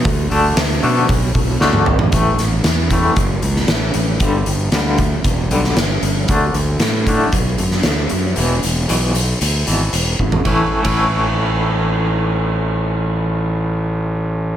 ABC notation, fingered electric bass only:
X:1
M:4/4
L:1/16
Q:1/4=115
K:A
V:1 name="Fingered electric bass" clef=bass
D,,2 D,,2 D,,2 B,,2 B,,,2 B,,,2 D,,2 G,,,2 | A,,,2 A,,,2 E,,4 F,,,2 C,,2 A,,,2 A,,,2 | =G,,,2 G,,,2 D,,4 E,,,2 B,,,2 G,,,2 G,,,2 | D,,2 D,,2 A,,4 B,,,2 F,,2 D,,2 F,,2 |
E,,,2 E,,,2 B,,,4 D,,2 G,,,2 E,,,2 G,,,2 | A,,, z2 A,,,12- A,,,- | A,,,16 |]